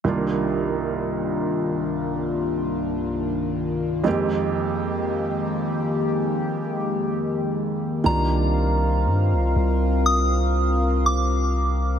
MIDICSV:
0, 0, Header, 1, 5, 480
1, 0, Start_track
1, 0, Key_signature, -3, "minor"
1, 0, Tempo, 1000000
1, 26, Time_signature, 4, 2, 24, 8
1, 5755, End_track
2, 0, Start_track
2, 0, Title_t, "Synth bell"
2, 0, Program_c, 0, 98
2, 3869, Note_on_c, 0, 82, 85
2, 4829, Note_on_c, 0, 87, 103
2, 4857, Note_off_c, 0, 82, 0
2, 5309, Note_on_c, 0, 86, 92
2, 5322, Note_off_c, 0, 87, 0
2, 5755, Note_off_c, 0, 86, 0
2, 5755, End_track
3, 0, Start_track
3, 0, Title_t, "Analog synth pad"
3, 0, Program_c, 1, 89
3, 26, Note_on_c, 1, 51, 70
3, 26, Note_on_c, 1, 62, 71
3, 27, Note_on_c, 1, 36, 79
3, 27, Note_on_c, 1, 58, 71
3, 28, Note_on_c, 1, 43, 71
3, 28, Note_on_c, 1, 65, 86
3, 1927, Note_off_c, 1, 36, 0
3, 1927, Note_off_c, 1, 62, 0
3, 1928, Note_off_c, 1, 43, 0
3, 1928, Note_off_c, 1, 65, 0
3, 1945, Note_on_c, 1, 56, 73
3, 1946, Note_on_c, 1, 41, 74
3, 1946, Note_on_c, 1, 67, 90
3, 3847, Note_off_c, 1, 41, 0
3, 3847, Note_off_c, 1, 51, 0
3, 3847, Note_off_c, 1, 56, 0
3, 3847, Note_off_c, 1, 58, 0
3, 3847, Note_off_c, 1, 67, 0
3, 3866, Note_on_c, 1, 60, 78
3, 3866, Note_on_c, 1, 65, 73
3, 3868, Note_on_c, 1, 77, 83
3, 3869, Note_on_c, 1, 70, 74
3, 5755, Note_off_c, 1, 60, 0
3, 5755, Note_off_c, 1, 65, 0
3, 5755, Note_off_c, 1, 70, 0
3, 5755, Note_off_c, 1, 77, 0
3, 5755, End_track
4, 0, Start_track
4, 0, Title_t, "Felt piano"
4, 0, Program_c, 2, 0
4, 20, Note_on_c, 2, 36, 70
4, 23, Note_on_c, 2, 51, 63
4, 27, Note_on_c, 2, 55, 60
4, 31, Note_on_c, 2, 58, 63
4, 36, Note_on_c, 2, 62, 64
4, 39, Note_on_c, 2, 65, 75
4, 118, Control_c, 2, 64, 127
4, 1924, Note_off_c, 2, 36, 0
4, 1925, Note_off_c, 2, 51, 0
4, 1928, Note_off_c, 2, 55, 0
4, 1930, Note_off_c, 2, 58, 0
4, 1932, Note_off_c, 2, 62, 0
4, 1934, Note_off_c, 2, 65, 0
4, 1937, Note_on_c, 2, 41, 71
4, 1941, Note_on_c, 2, 51, 65
4, 1946, Note_on_c, 2, 56, 67
4, 1950, Note_on_c, 2, 58, 68
4, 1953, Control_c, 2, 64, 0
4, 1953, Note_on_c, 2, 60, 65
4, 1956, Note_on_c, 2, 67, 81
4, 2049, Control_c, 2, 64, 127
4, 3843, Note_off_c, 2, 41, 0
4, 3844, Note_off_c, 2, 51, 0
4, 3847, Note_off_c, 2, 56, 0
4, 3849, Note_off_c, 2, 58, 0
4, 3850, Note_off_c, 2, 60, 0
4, 3852, Note_off_c, 2, 67, 0
4, 3859, Note_on_c, 2, 51, 62
4, 3864, Note_on_c, 2, 55, 61
4, 3870, Note_on_c, 2, 58, 59
4, 3873, Control_c, 2, 64, 0
4, 3874, Note_on_c, 2, 62, 59
4, 3879, Note_on_c, 2, 65, 69
4, 3944, Control_c, 2, 64, 127
4, 5755, Note_off_c, 2, 51, 0
4, 5755, Note_off_c, 2, 55, 0
4, 5755, Note_off_c, 2, 58, 0
4, 5755, Note_off_c, 2, 62, 0
4, 5755, Note_off_c, 2, 65, 0
4, 5755, End_track
5, 0, Start_track
5, 0, Title_t, "808-style bass"
5, 0, Program_c, 3, 38
5, 3869, Note_on_c, 3, 36, 99
5, 4348, Note_on_c, 3, 43, 98
5, 4355, Note_off_c, 3, 36, 0
5, 4477, Note_on_c, 3, 36, 98
5, 4485, Note_off_c, 3, 43, 0
5, 4582, Note_off_c, 3, 36, 0
5, 4589, Note_on_c, 3, 36, 93
5, 5755, Note_off_c, 3, 36, 0
5, 5755, End_track
0, 0, End_of_file